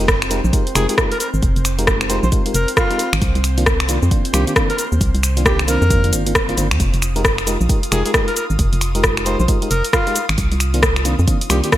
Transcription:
Already playing: F1 C4 C5
0.08 kick, cross-stick, shaker
0.22 finger snap, shaker
0.31 G#3 D#4 F4 G4 A#4, open hi-hat, shaker
0.44 A#1, shaker
0.53 G#3 D#4 F4 G4 A#4, kick, closed hi-hat, shaker
0.67 closed hi-hat, shaker
0.75 F1 G#3 D#4 F4 G4 G#4 A#4, finger snap, open hi-hat, shaker
0.89 G#3 D#4 F4 G4 G#4 A#4, closed hi-hat, shaker
0.98 G#3 D#4 F4 G4 A#4, kick, cross-stick, shaker
1.11 A#4, closed hi-hat, shaker
1.20 A#4, open hi-hat, shaker
1.34 G#1, shaker
1.43 F1, kick, closed hi-hat, shaker
1.56 F1, closed hi-hat, shaker
1.65 finger snap, open hi-hat, shaker
1.79 G#3 D#4 F4 G4 A#4, closed hi-hat, shaker
1.87 kick, cross-stick, shaker
2.01 finger snap, shaker
2.10 G#3 D#4 F4 G4 A#4 C5, open hi-hat, shaker
2.23 A#1 C5, shaker
2.32 G#3 D#4 F4 G4 A#4, kick, closed hi-hat, shaker
2.46 G#3 D#4 F4 G4 A#4, closed hi-hat, shaker
2.54 F1 A#4, open hi-hat, shaker
2.68 closed hi-hat, shaker
2.77 F4, kick, cross-stick, shaker
2.90 G#3 D#4 F4 G4 A#4, closed hi-hat, shaker
2.99 open hi-hat, shaker
3.13 G#1, finger snap, shaker
3.22 C2, kick, closed hi-hat, shaker
3.35 C2, closed hi-hat, shaker
3.44 finger snap, open hi-hat, shaker
3.58 D#3 A#3 C4 D4 F4, closed hi-hat, shaker
3.66 kick, cross-stick, shaker
3.80 finger snap, shaker
3.89 D#3 A#3 C4 D4 F4, open hi-hat, shaker
4.03 F2, shaker
4.11 D#3 A#3 C4 D4 F4, kick, closed hi-hat, shaker
4.25 closed hi-hat, shaker
4.33 C2 D#3 A#3 C4 D4 F4 G4, finger snap, open hi-hat, shaker
4.47 D#3 A#3 C4 D4 F4 G4, closed hi-hat, shaker
4.56 D#3 A#3 C4 D4 F4, kick, cross-stick, shaker
4.70 A#4, closed hi-hat, shaker
4.78 A#4, open hi-hat, shaker
4.92 D#2, shaker
5.01 C2, kick, closed hi-hat, shaker
5.15 C2, closed hi-hat, shaker
5.23 finger snap, open hi-hat, shaker
5.37 D#3 A#3 C4 D4 F4, closed hi-hat, shaker
5.45 G4, kick, cross-stick, shaker
5.59 finger snap, shaker
5.68 D#3 A#3 C4 D4 F4 A#4, open hi-hat, shaker
5.82 F2, shaker
5.90 D#3 A#3 C4 D4 F4, kick, closed hi-hat, shaker
6.04 D#3 A#3 C4 D4 F4, closed hi-hat, shaker
6.13 G1 D#3 A#3 C4 D4 F4, open hi-hat, shaker
6.26 D#3 A#3 C4 D4 F4, closed hi-hat, shaker
6.35 kick, cross-stick, shaker
6.49 D#3 A#3 C4 D4 F4, closed hi-hat, shaker
6.57 G1 D#3 A#3 C4 D4 F4, open hi-hat, shaker
6.71 D#2, finger snap, shaker
6.80 F1 F4 D#6, kick, closed hi-hat, shaker
6.94 F1, closed hi-hat, shaker
7.02 finger snap, open hi-hat, shaker
7.16 G#3 D#4 F4 G4 A#4, closed hi-hat, shaker
7.25 kick, cross-stick, shaker
7.38 finger snap, shaker
7.47 G#3 D#4 F4 G4 A#4, open hi-hat, shaker
7.61 A#1, shaker
7.69 G#3 D#4 F4 G4 A#4, kick, closed hi-hat, shaker
7.83 closed hi-hat, shaker
7.92 F1 G#3 D#4 F4 G4 G#4 A#4, finger snap, open hi-hat, shaker
8.05 G#3 D#4 F4 G4 G#4 A#4, closed hi-hat, shaker
8.14 G#3 D#4 G4 A#4, kick, cross-stick, shaker
8.28 A#4, closed hi-hat, shaker
8.36 A#4, open hi-hat, shaker
8.50 G#1, shaker
8.59 F1, kick, closed hi-hat, shaker
8.73 F1, closed hi-hat, shaker
8.81 finger snap, open hi-hat, shaker
8.95 G#3 D#4 F4 G4 A#4, closed hi-hat, shaker
9.04 kick, cross-stick, shaker
9.17 finger snap, shaker
9.26 G#3 D#4 F4 G4 A#4 C5, open hi-hat, shaker
9.39 A#1 C5, shaker
9.48 G#3 D#4 F4 G4 A#4, kick, closed hi-hat, shaker
9.62 G#3 D#4 F4 G4 A#4, closed hi-hat, shaker
9.70 F1 A#4, open hi-hat, shaker
9.85 closed hi-hat, shaker
9.93 F4, kick, cross-stick, shaker
10.07 G#3 D#4 F4 G4 A#4, closed hi-hat, shaker
10.16 open hi-hat, shaker
10.29 G#1, finger snap, shaker
10.38 C2, kick, closed hi-hat, shaker
10.52 C2, closed hi-hat, shaker
10.60 finger snap, open hi-hat, shaker
10.74 D#3 A#3 C4 D4 F4, closed hi-hat, shaker
10.83 kick, cross-stick, shaker
10.96 finger snap, shaker
11.05 D#3 A#3 C4 D4 F4, open hi-hat, shaker
11.19 F2, shaker
11.28 D#3 A#3 C4 D4 F4, kick, closed hi-hat, shaker
11.41 closed hi-hat, shaker
11.50 C2 D#3 A#3 C4 D4 F4 G4, finger snap, open hi-hat, shaker
11.64 D#3 A#3 C4 D4 F4 G4, closed hi-hat, shaker
11.72 D#3 A#3 C4 D4 F4, kick, cross-stick, shaker

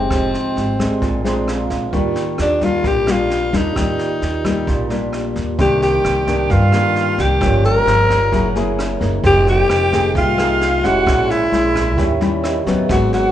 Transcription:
Already playing: F#1 G#3 C4 D#4 G4 A#4 C#5 D#5
0.08 F1 F3 G4, kick, cross-stick, snare
0.12 C5 D#5
0.34 snare
0.56 G#1, snare
0.79 G#3 C4 D4, kick, cross-stick, snare
1.00 A#1 A#2 F4 G#4 C5, kick, snare
1.06 D5
1.24 G#3 C4 D4 A#5, snare
1.48 cross-stick, snare
1.70 A#1, kick, snare
1.91 D#2 D#3 G3 A#3 D4 F4 G4 A#4, kick, snare
1.96 D5
2.15 snare
2.38 D#2 D4, cross-stick, snare
2.61 G3 A#3 D4 F4, kick, snare
2.84 A#1 A#2 G4, kick, snare
3.07 G3 A#3 D4, cross-stick, snare
3.11 F4
3.30 snare
3.53 D#2 G3 A#3 D4, kick, snare
3.57 D#4
3.73 D#2 D#3 G3 A#3 F4 G4, kick, cross-stick, snare
3.77 A#4 D5
3.99 snare
4.22 D#2, snare
4.44 G3 A#3, kick, cross-stick, snare
4.67 A#1 A#2, kick, snare
4.90 G3 A#3 D4, snare
5.13 cross-stick, snare
5.36 D#2, kick, snare
5.57 C2 C3 D#3 A#3 D4 G4 A#4 G5, kick, snare
5.62 D5
5.81 G4 G5, snare
6.04 C2, cross-stick, snare
6.27 D#3 A#3 D4, kick, snare
6.50 G2 F4 F5, kick, snare
6.72 D#3 A#3 D4, cross-stick, snare
6.96 snare
7.18 C2 G4 G5, kick, snare
7.38 G1 G2 F3 A#3 C#4 F4 G4, kick, cross-stick, snare
7.42 A#4 C#5
7.64 A#4 A#5, snare
7.86 G1 F3 A#3 C#4, snare
8.09 kick, cross-stick, snare
8.29 F#1 F#3 A#3 E4 G#4, kick, snare
8.33 E4 A#4
8.55 A#3 E4 G#4, snare
8.79 cross-stick, snare
9.00 F#1 A#3 D#4, kick, snare
9.24 F1 F3 G4 A#4 G5, kick, snare
9.28 D#5
9.47 G4 G5, snare
9.69 F1, cross-stick, snare
9.92 A#3 D#4 G#4, kick, snare
10.15 C2 C3 F4 F5, kick, snare
10.38 A#3 D#4 G#4, cross-stick, snare
10.61 snare
10.82 F1 G#3 C#4 E4 F#4 G4 G#4 A#4 D#5 F#5, kick, snare
11.03 A#1 A#2 G#4 A#4, kick, cross-stick, snare
11.07 C#5 E5
11.30 E4 E5, snare
11.52 A#1 G#3 C#4 E4, snare
11.75 kick, cross-stick, snare
11.95 D#2 D#3 G3 C#4 E4 G4 A#4, kick, snare
11.99 C#5 E5
12.21 G3 C#4 E4, snare
12.44 D#5, cross-stick, snare
12.66 D#2 F#3 B3 C#4, kick, snare
12.86 G#1 G#2 G#4 A#4 F#5, kick, snare
12.90 F#4 B4 C#5
13.13 F#4 F#5, snare

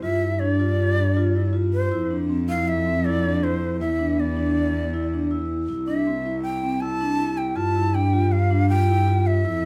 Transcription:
0.02 G2 F4 E5
0.22 E4
0.39 D4 D5
0.60 F4
0.97 D4
1.17 F4
1.35 E4
1.53 F4
1.73 C5
1.91 F2 E4
2.11 D4
2.30 C4
2.48 E4 F5
2.68 E5
2.86 C4
3.05 E4 D5
3.24 D4
3.43 E4 C5
3.80 E2 E4 E5
3.99 D4
4.18 B3 D5
4.37 D4
4.74 B3
4.93 E4
5.13 D4
5.31 E4
5.69 C2 E4
5.87 D4 E5
6.07 C4
6.26 E4
6.43 G5
6.63 C4
6.81 E4 A5
7.01 D4
7.19 E4
7.37 G5
7.56 G2 F4 A5
7.76 E4
7.94 D4 G5
8.13 F4
8.32 F5
8.51 D4
8.69 F4 G5
8.88 E4
9.08 F4
9.27 E5
9.45 F2 E4

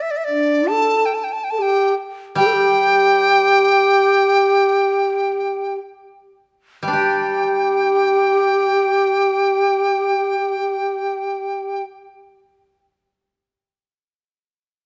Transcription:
0.02 E5
0.11 D5
0.17 E5
0.24 D4 D5
0.67 A4 A5
1.06 G5
1.14 A5
1.24 G5
1.33 A5
1.44 G5
1.50 A4 A5
1.59 G4 G5
2.35 G3 G5
2.40 G4
2.46 A4
2.53 G4
6.83 G3
6.88 D4
6.93 G4 G5

